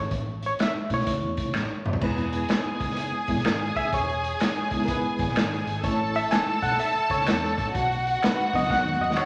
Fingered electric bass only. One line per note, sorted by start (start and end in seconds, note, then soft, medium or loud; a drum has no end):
0.11 0.52 A1 medium
0.75 muted fingered electric bass stroke soft
0.90 1.04 B1 medium
1.07 1.20 C#2 loud
1.22 1.35 E2 medium
1.46 1.53 C#2 medium
1.54 1.67 A1 medium
1.85 1.99 F#1 medium
2.01 2.42 E1 loud
2.65 muted fingered electric bass stroke soft
2.80 3.08 F#1 medium
3.28 3.35 G#1 medium
3.36 3.43 B1 loud
3.44 3.71 G#1 medium
3.75 3.90 F#1 medium
3.92 4.33 E1 loud
4.56 muted fingered electric bass stroke soft
4.71 4.99 F#1 medium
5.19 5.26 G#1 medium
5.27 5.34 B1 medium
5.35 5.62 G#1 medium
5.66 5.81 G#1 medium
5.83 6.24 A1 loud
6.46 muted fingered electric bass stroke soft
6.62 6.76 B1 loud
6.95 muted fingered electric bass stroke soft
7.10 7.24 C#2 loud
7.26 7.53 E2 loud
7.58 7.72 A1 medium
7.74 8.15 B1 loud
8.38 muted fingered electric bass stroke soft
8.53 8.67 C#2 loud
8.85 8.98 D#2 medium
9.00 9.07 F#2 medium
9.08 9.15 D#2 loud
9.17 muted fingered electric bass stroke soft